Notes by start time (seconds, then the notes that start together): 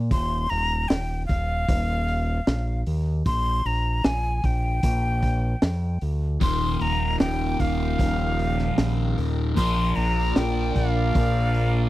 Already playing: A#2
0.11 D#1 C6, kick, open hi-hat
0.50 D#1 A#5, open hi-hat
0.88 D#1 G5, snare, open hi-hat
1.26 D#1 F5, kick, open hi-hat
1.69 D#1, kick, open hi-hat
2.08 open hi-hat
2.47 A#1, snare, open hi-hat
2.87 D#2, open hi-hat
3.26 A#1 C6, kick, open hi-hat
3.65 A#1 A#5, open hi-hat
4.04 A#1 G#5, snare, open hi-hat
4.44 A#1 G5, kick, open hi-hat
4.83 A#1, kick, open hi-hat
5.22 kick, open hi-hat
5.62 F2, snare, open hi-hat
6.01 D2, open hi-hat
6.40 D#1 D#2 A#2 D#3 F3 A#3 D#4 G4 A#4 C6, kick, open hi-hat
6.81 D#1 A#5, open hi-hat
7.20 D#1 G5, snare, open hi-hat
7.60 D#1 F5, kick, open hi-hat
7.99 D#1, kick, open hi-hat
8.39 open hi-hat
8.59 snare
8.78 A#1, snare, open hi-hat
9.18 D#2, open hi-hat
9.56 A#1 A#2 F3 A#3 D4 D5 C6, kick, open hi-hat
9.96 A#1 A#5, open hi-hat
10.36 A#1 G5, snare, open hi-hat
10.75 A#1 F5, kick, open hi-hat
11.15 A#1, kick, open hi-hat
11.54 open hi-hat